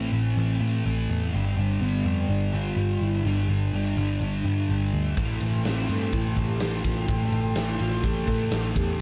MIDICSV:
0, 0, Header, 1, 7, 480
1, 0, Start_track
1, 0, Key_signature, 0, "minor"
1, 0, Tempo, 479616
1, 1333, Time_signature, 4, 2, 24, 8
1, 9019, End_track
2, 0, Start_track
2, 0, Title_t, "Analog synth pad"
2, 0, Program_c, 0, 89
2, 5176, Note_on_c, 0, 84, 93
2, 5183, Note_on_c, 0, 69, 82
2, 5186, Note_on_c, 0, 79, 76
2, 8969, Note_off_c, 0, 84, 0
2, 9019, Note_off_c, 0, 69, 0
2, 9019, Note_off_c, 0, 79, 0
2, 9019, End_track
3, 0, Start_track
3, 0, Title_t, "Soft synth lead"
3, 0, Program_c, 1, 80
3, 0, Note_on_c, 1, 60, 92
3, 1055, Note_off_c, 1, 60, 0
3, 1811, Note_on_c, 1, 59, 100
3, 2260, Note_off_c, 1, 59, 0
3, 2300, Note_on_c, 1, 62, 104
3, 2542, Note_on_c, 1, 65, 109
3, 2557, Note_off_c, 1, 62, 0
3, 3030, Note_on_c, 1, 64, 100
3, 3045, Note_off_c, 1, 65, 0
3, 3254, Note_on_c, 1, 62, 92
3, 3269, Note_off_c, 1, 64, 0
3, 3737, Note_off_c, 1, 62, 0
3, 3749, Note_on_c, 1, 62, 93
3, 4904, Note_off_c, 1, 62, 0
3, 5679, Note_on_c, 1, 60, 89
3, 6144, Note_on_c, 1, 64, 95
3, 6159, Note_off_c, 1, 60, 0
3, 6364, Note_on_c, 1, 67, 106
3, 6379, Note_off_c, 1, 64, 0
3, 6839, Note_on_c, 1, 65, 87
3, 6854, Note_off_c, 1, 67, 0
3, 7087, Note_off_c, 1, 65, 0
3, 7569, Note_on_c, 1, 64, 79
3, 7794, Note_off_c, 1, 64, 0
3, 7823, Note_on_c, 1, 65, 83
3, 8051, Note_on_c, 1, 67, 97
3, 8066, Note_off_c, 1, 65, 0
3, 8287, Note_on_c, 1, 69, 107
3, 8302, Note_off_c, 1, 67, 0
3, 8766, Note_on_c, 1, 67, 89
3, 8781, Note_off_c, 1, 69, 0
3, 9007, Note_off_c, 1, 67, 0
3, 9019, End_track
4, 0, Start_track
4, 0, Title_t, "Overdriven electric guitar"
4, 0, Program_c, 2, 29
4, 0, Note_on_c, 2, 45, 63
4, 0, Note_on_c, 2, 52, 65
4, 0, Note_on_c, 2, 60, 73
4, 0, Note_on_c, 2, 64, 76
4, 0, Note_on_c, 2, 69, 72
4, 1320, Note_on_c, 2, 43, 76
4, 1323, Note_off_c, 2, 45, 0
4, 1327, Note_on_c, 2, 50, 68
4, 1329, Note_off_c, 2, 52, 0
4, 1333, Note_off_c, 2, 60, 0
4, 1333, Note_on_c, 2, 55, 70
4, 1337, Note_on_c, 2, 59, 82
4, 1339, Note_off_c, 2, 64, 0
4, 1343, Note_off_c, 2, 69, 0
4, 1343, Note_on_c, 2, 62, 77
4, 1347, Note_on_c, 2, 67, 74
4, 5169, Note_off_c, 2, 50, 0
4, 5172, Note_off_c, 2, 43, 0
4, 5173, Note_off_c, 2, 55, 0
4, 5173, Note_on_c, 2, 45, 69
4, 5177, Note_on_c, 2, 52, 75
4, 5181, Note_off_c, 2, 59, 0
4, 5184, Note_off_c, 2, 62, 0
4, 5186, Note_on_c, 2, 60, 72
4, 5189, Note_on_c, 2, 64, 68
4, 5193, Note_off_c, 2, 67, 0
4, 5197, Note_on_c, 2, 69, 75
4, 8999, Note_off_c, 2, 45, 0
4, 9005, Note_off_c, 2, 52, 0
4, 9012, Note_off_c, 2, 60, 0
4, 9014, Note_off_c, 2, 64, 0
4, 9019, Note_off_c, 2, 69, 0
4, 9019, End_track
5, 0, Start_track
5, 0, Title_t, "Distorted electric guitar"
5, 0, Program_c, 3, 30
5, 0, Note_on_c, 3, 45, 69
5, 0, Note_on_c, 3, 52, 76
5, 0, Note_on_c, 3, 57, 88
5, 120, Note_off_c, 3, 57, 0
5, 124, Note_on_c, 3, 57, 73
5, 127, Note_off_c, 3, 52, 0
5, 139, Note_on_c, 3, 52, 68
5, 369, Note_off_c, 3, 45, 0
5, 601, Note_off_c, 3, 57, 0
5, 605, Note_on_c, 3, 57, 81
5, 613, Note_off_c, 3, 52, 0
5, 625, Note_on_c, 3, 52, 55
5, 850, Note_off_c, 3, 52, 0
5, 850, Note_on_c, 3, 45, 62
5, 862, Note_on_c, 3, 52, 68
5, 865, Note_off_c, 3, 57, 0
5, 869, Note_on_c, 3, 57, 74
5, 1318, Note_off_c, 3, 45, 0
5, 1324, Note_off_c, 3, 52, 0
5, 1329, Note_on_c, 3, 43, 90
5, 1338, Note_on_c, 3, 50, 87
5, 1347, Note_on_c, 3, 55, 96
5, 1359, Note_off_c, 3, 57, 0
5, 1569, Note_off_c, 3, 55, 0
5, 1573, Note_on_c, 3, 55, 68
5, 1584, Note_off_c, 3, 50, 0
5, 1596, Note_on_c, 3, 50, 59
5, 1808, Note_off_c, 3, 43, 0
5, 1811, Note_off_c, 3, 50, 0
5, 1812, Note_on_c, 3, 43, 71
5, 1823, Note_on_c, 3, 50, 85
5, 1829, Note_off_c, 3, 55, 0
5, 1833, Note_on_c, 3, 55, 85
5, 2049, Note_off_c, 3, 55, 0
5, 2053, Note_on_c, 3, 55, 70
5, 2061, Note_off_c, 3, 50, 0
5, 2073, Note_on_c, 3, 50, 64
5, 2526, Note_off_c, 3, 55, 0
5, 2530, Note_on_c, 3, 55, 67
5, 2534, Note_off_c, 3, 50, 0
5, 2546, Note_on_c, 3, 50, 60
5, 2770, Note_off_c, 3, 43, 0
5, 2770, Note_off_c, 3, 50, 0
5, 2774, Note_on_c, 3, 43, 61
5, 2782, Note_on_c, 3, 50, 72
5, 2788, Note_off_c, 3, 55, 0
5, 2792, Note_on_c, 3, 55, 75
5, 3238, Note_off_c, 3, 43, 0
5, 3246, Note_off_c, 3, 50, 0
5, 3250, Note_on_c, 3, 43, 92
5, 3259, Note_on_c, 3, 50, 96
5, 3263, Note_off_c, 3, 55, 0
5, 3267, Note_on_c, 3, 55, 92
5, 3493, Note_off_c, 3, 55, 0
5, 3497, Note_on_c, 3, 55, 60
5, 3501, Note_off_c, 3, 50, 0
5, 3513, Note_on_c, 3, 50, 53
5, 3735, Note_off_c, 3, 43, 0
5, 3744, Note_off_c, 3, 50, 0
5, 3747, Note_on_c, 3, 43, 73
5, 3756, Note_on_c, 3, 50, 75
5, 3759, Note_off_c, 3, 55, 0
5, 3763, Note_on_c, 3, 55, 76
5, 3973, Note_off_c, 3, 55, 0
5, 3977, Note_on_c, 3, 55, 71
5, 3988, Note_off_c, 3, 50, 0
5, 4001, Note_on_c, 3, 50, 60
5, 4223, Note_off_c, 3, 43, 0
5, 4457, Note_off_c, 3, 55, 0
5, 4461, Note_on_c, 3, 55, 68
5, 4464, Note_off_c, 3, 50, 0
5, 4476, Note_on_c, 3, 50, 51
5, 4695, Note_off_c, 3, 50, 0
5, 4695, Note_on_c, 3, 43, 58
5, 4707, Note_on_c, 3, 50, 75
5, 4715, Note_off_c, 3, 55, 0
5, 4719, Note_on_c, 3, 55, 67
5, 5163, Note_off_c, 3, 43, 0
5, 5168, Note_off_c, 3, 50, 0
5, 5172, Note_on_c, 3, 45, 85
5, 5180, Note_off_c, 3, 55, 0
5, 5184, Note_on_c, 3, 52, 84
5, 5194, Note_on_c, 3, 57, 99
5, 5422, Note_off_c, 3, 57, 0
5, 5426, Note_on_c, 3, 57, 62
5, 5439, Note_off_c, 3, 52, 0
5, 5443, Note_on_c, 3, 52, 55
5, 5655, Note_off_c, 3, 45, 0
5, 5659, Note_on_c, 3, 45, 75
5, 5664, Note_off_c, 3, 52, 0
5, 5668, Note_on_c, 3, 52, 72
5, 5676, Note_off_c, 3, 57, 0
5, 5680, Note_on_c, 3, 57, 77
5, 5895, Note_off_c, 3, 57, 0
5, 5899, Note_on_c, 3, 57, 74
5, 5911, Note_off_c, 3, 52, 0
5, 5915, Note_on_c, 3, 52, 66
5, 6370, Note_off_c, 3, 57, 0
5, 6374, Note_on_c, 3, 57, 67
5, 6384, Note_off_c, 3, 52, 0
5, 6396, Note_on_c, 3, 52, 58
5, 6618, Note_off_c, 3, 45, 0
5, 6618, Note_off_c, 3, 52, 0
5, 6622, Note_on_c, 3, 45, 56
5, 6630, Note_on_c, 3, 52, 74
5, 6633, Note_off_c, 3, 57, 0
5, 6637, Note_on_c, 3, 57, 73
5, 7076, Note_off_c, 3, 45, 0
5, 7088, Note_off_c, 3, 52, 0
5, 7088, Note_on_c, 3, 45, 91
5, 7100, Note_on_c, 3, 52, 91
5, 7103, Note_off_c, 3, 57, 0
5, 7107, Note_on_c, 3, 57, 103
5, 7325, Note_off_c, 3, 57, 0
5, 7329, Note_on_c, 3, 57, 70
5, 7335, Note_off_c, 3, 52, 0
5, 7347, Note_on_c, 3, 52, 56
5, 7556, Note_off_c, 3, 45, 0
5, 7566, Note_off_c, 3, 52, 0
5, 7568, Note_on_c, 3, 45, 73
5, 7578, Note_on_c, 3, 52, 82
5, 7580, Note_off_c, 3, 57, 0
5, 7584, Note_on_c, 3, 57, 84
5, 7795, Note_off_c, 3, 57, 0
5, 7799, Note_on_c, 3, 57, 72
5, 7807, Note_off_c, 3, 52, 0
5, 7819, Note_on_c, 3, 52, 60
5, 8050, Note_off_c, 3, 45, 0
5, 8269, Note_off_c, 3, 57, 0
5, 8273, Note_on_c, 3, 57, 84
5, 8282, Note_off_c, 3, 52, 0
5, 8294, Note_on_c, 3, 52, 58
5, 8520, Note_off_c, 3, 52, 0
5, 8523, Note_on_c, 3, 45, 69
5, 8532, Note_on_c, 3, 52, 75
5, 8535, Note_off_c, 3, 57, 0
5, 8539, Note_on_c, 3, 57, 73
5, 8990, Note_off_c, 3, 45, 0
5, 8995, Note_off_c, 3, 52, 0
5, 9019, Note_off_c, 3, 57, 0
5, 9019, End_track
6, 0, Start_track
6, 0, Title_t, "Picked electric bass"
6, 0, Program_c, 4, 34
6, 131, Note_on_c, 4, 33, 84
6, 332, Note_off_c, 4, 33, 0
6, 374, Note_on_c, 4, 33, 88
6, 574, Note_off_c, 4, 33, 0
6, 608, Note_on_c, 4, 45, 91
6, 811, Note_off_c, 4, 45, 0
6, 856, Note_on_c, 4, 33, 83
6, 1056, Note_off_c, 4, 33, 0
6, 1099, Note_on_c, 4, 40, 73
6, 1298, Note_off_c, 4, 40, 0
6, 1341, Note_on_c, 4, 31, 88
6, 1540, Note_off_c, 4, 31, 0
6, 1576, Note_on_c, 4, 31, 96
6, 1777, Note_off_c, 4, 31, 0
6, 1812, Note_on_c, 4, 31, 83
6, 2015, Note_off_c, 4, 31, 0
6, 2052, Note_on_c, 4, 41, 84
6, 2255, Note_off_c, 4, 41, 0
6, 2291, Note_on_c, 4, 31, 89
6, 2495, Note_off_c, 4, 31, 0
6, 2532, Note_on_c, 4, 31, 83
6, 2736, Note_off_c, 4, 31, 0
6, 2767, Note_on_c, 4, 31, 88
6, 2973, Note_off_c, 4, 31, 0
6, 3014, Note_on_c, 4, 31, 77
6, 3217, Note_off_c, 4, 31, 0
6, 3254, Note_on_c, 4, 31, 84
6, 3457, Note_off_c, 4, 31, 0
6, 3488, Note_on_c, 4, 31, 90
6, 3694, Note_off_c, 4, 31, 0
6, 3734, Note_on_c, 4, 31, 91
6, 3937, Note_off_c, 4, 31, 0
6, 3973, Note_on_c, 4, 31, 81
6, 4177, Note_off_c, 4, 31, 0
6, 4210, Note_on_c, 4, 31, 98
6, 4415, Note_off_c, 4, 31, 0
6, 4450, Note_on_c, 4, 43, 85
6, 4655, Note_off_c, 4, 43, 0
6, 4694, Note_on_c, 4, 31, 69
6, 4898, Note_off_c, 4, 31, 0
6, 4938, Note_on_c, 4, 38, 76
6, 5140, Note_off_c, 4, 38, 0
6, 5174, Note_on_c, 4, 33, 94
6, 5377, Note_off_c, 4, 33, 0
6, 5420, Note_on_c, 4, 33, 83
6, 5621, Note_off_c, 4, 33, 0
6, 5662, Note_on_c, 4, 33, 75
6, 5861, Note_off_c, 4, 33, 0
6, 5897, Note_on_c, 4, 43, 86
6, 6099, Note_off_c, 4, 43, 0
6, 6133, Note_on_c, 4, 33, 91
6, 6336, Note_off_c, 4, 33, 0
6, 6368, Note_on_c, 4, 33, 83
6, 6573, Note_off_c, 4, 33, 0
6, 6615, Note_on_c, 4, 33, 75
6, 6816, Note_off_c, 4, 33, 0
6, 6848, Note_on_c, 4, 33, 80
6, 7053, Note_off_c, 4, 33, 0
6, 7085, Note_on_c, 4, 33, 91
6, 7291, Note_off_c, 4, 33, 0
6, 7329, Note_on_c, 4, 33, 85
6, 7533, Note_off_c, 4, 33, 0
6, 7567, Note_on_c, 4, 33, 91
6, 7771, Note_off_c, 4, 33, 0
6, 7815, Note_on_c, 4, 33, 83
6, 8015, Note_off_c, 4, 33, 0
6, 8044, Note_on_c, 4, 33, 82
6, 8248, Note_off_c, 4, 33, 0
6, 8284, Note_on_c, 4, 45, 85
6, 8488, Note_off_c, 4, 45, 0
6, 8517, Note_on_c, 4, 33, 76
6, 8723, Note_off_c, 4, 33, 0
6, 8763, Note_on_c, 4, 40, 75
6, 8966, Note_off_c, 4, 40, 0
6, 9019, End_track
7, 0, Start_track
7, 0, Title_t, "Drums"
7, 5176, Note_on_c, 9, 36, 101
7, 5176, Note_on_c, 9, 51, 85
7, 5276, Note_off_c, 9, 51, 0
7, 5277, Note_off_c, 9, 36, 0
7, 5412, Note_on_c, 9, 51, 64
7, 5512, Note_off_c, 9, 51, 0
7, 5655, Note_on_c, 9, 51, 82
7, 5659, Note_on_c, 9, 38, 95
7, 5755, Note_off_c, 9, 51, 0
7, 5759, Note_off_c, 9, 38, 0
7, 5894, Note_on_c, 9, 51, 71
7, 5994, Note_off_c, 9, 51, 0
7, 6133, Note_on_c, 9, 51, 90
7, 6135, Note_on_c, 9, 36, 82
7, 6233, Note_off_c, 9, 51, 0
7, 6235, Note_off_c, 9, 36, 0
7, 6369, Note_on_c, 9, 51, 69
7, 6372, Note_on_c, 9, 36, 71
7, 6469, Note_off_c, 9, 51, 0
7, 6472, Note_off_c, 9, 36, 0
7, 6607, Note_on_c, 9, 51, 99
7, 6611, Note_on_c, 9, 38, 112
7, 6707, Note_off_c, 9, 51, 0
7, 6711, Note_off_c, 9, 38, 0
7, 6847, Note_on_c, 9, 51, 67
7, 6851, Note_on_c, 9, 36, 87
7, 6948, Note_off_c, 9, 51, 0
7, 6951, Note_off_c, 9, 36, 0
7, 7090, Note_on_c, 9, 36, 108
7, 7091, Note_on_c, 9, 51, 87
7, 7190, Note_off_c, 9, 36, 0
7, 7191, Note_off_c, 9, 51, 0
7, 7328, Note_on_c, 9, 51, 65
7, 7429, Note_off_c, 9, 51, 0
7, 7561, Note_on_c, 9, 51, 89
7, 7565, Note_on_c, 9, 38, 102
7, 7661, Note_off_c, 9, 51, 0
7, 7665, Note_off_c, 9, 38, 0
7, 7801, Note_on_c, 9, 51, 73
7, 7902, Note_off_c, 9, 51, 0
7, 8040, Note_on_c, 9, 51, 88
7, 8044, Note_on_c, 9, 36, 81
7, 8140, Note_off_c, 9, 51, 0
7, 8144, Note_off_c, 9, 36, 0
7, 8277, Note_on_c, 9, 51, 63
7, 8284, Note_on_c, 9, 36, 71
7, 8377, Note_off_c, 9, 51, 0
7, 8384, Note_off_c, 9, 36, 0
7, 8521, Note_on_c, 9, 51, 94
7, 8525, Note_on_c, 9, 38, 108
7, 8621, Note_off_c, 9, 51, 0
7, 8625, Note_off_c, 9, 38, 0
7, 8653, Note_on_c, 9, 38, 33
7, 8753, Note_off_c, 9, 38, 0
7, 8767, Note_on_c, 9, 36, 85
7, 8774, Note_on_c, 9, 51, 66
7, 8867, Note_off_c, 9, 36, 0
7, 8874, Note_off_c, 9, 51, 0
7, 9019, End_track
0, 0, End_of_file